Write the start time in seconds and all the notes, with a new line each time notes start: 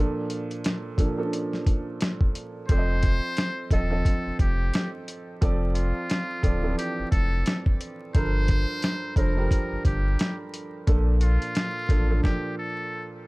Already playing: A#2 F3 D4 A4
0.30 closed hi-hat
0.51 closed hi-hat
0.64 snare, closed hi-hat
0.97 A#2 F3 D4 A4, kick, closed hi-hat
1.17 A#2 F3 C#4 A4
1.25 D4
1.33 closed hi-hat
1.53 snare
1.66 kick, closed hi-hat
2.01 snare, closed hi-hat
2.21 kick
2.35 closed hi-hat
2.69 F1 F3 C4 A4 C5 D5, kick, closed hi-hat
2.78 D#5
3.03 kick, closed hi-hat
3.37 snare, closed hi-hat
3.71 D#1 F3 C4 A4 D#5, kick, closed hi-hat
3.90 F3 C4 A4 D#5
4.05 kick, closed hi-hat
4.26 F1
4.39 F1 G4, kick, closed hi-hat
4.74 snare, closed hi-hat
5.08 closed hi-hat
5.41 F1 F3 C4 A4 D5, kick, closed hi-hat
5.75 F4, closed hi-hat
6.10 snare, closed hi-hat
6.42 D1 F3 C4 A4 D5, kick, closed hi-hat
6.62 E3 C4 A4 D5
6.69 F3
6.78 G4, closed hi-hat
6.99 F1
7.11 F1 A4, kick, closed hi-hat
7.46 snare, closed hi-hat
7.66 kick
7.81 closed hi-hat
8.15 G1 G2 F3 A4 A#4 C5, kick, closed hi-hat
8.48 kick, closed hi-hat
8.82 snare, closed hi-hat
9.16 F1 G2 F3 A4 A#4 C5, kick, closed hi-hat
9.37 G2 F3 G4 A#4
9.51 kick, closed hi-hat
9.72 G1
9.85 G1 G4, kick, closed hi-hat
10.19 snare, closed hi-hat
10.54 closed hi-hat
10.87 A#1 A#2 F3 D4 A4, kick, closed hi-hat
11.21 F4, closed hi-hat
11.42 closed hi-hat
11.55 snare, closed hi-hat
11.88 A1 A#2 F3 D4 A4, kick, closed hi-hat
12.08 A#2 F3 C#4 A4
12.16 D4
12.23 G4, kick, snare
12.58 A4